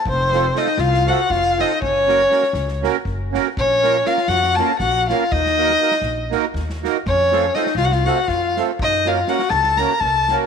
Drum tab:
SD |--o-ooooo-o-o-|--o-ooooo-o-o-|--o-ooooo-o-o-|-o-o-oo-o-ooo-|
BD |o---------o---|o---------o---|o---------o---|o---------o---|

SD |--o-ooooo-o-o-|--o-ooooo-o-o-|
BD |o---------o---|o---------o---|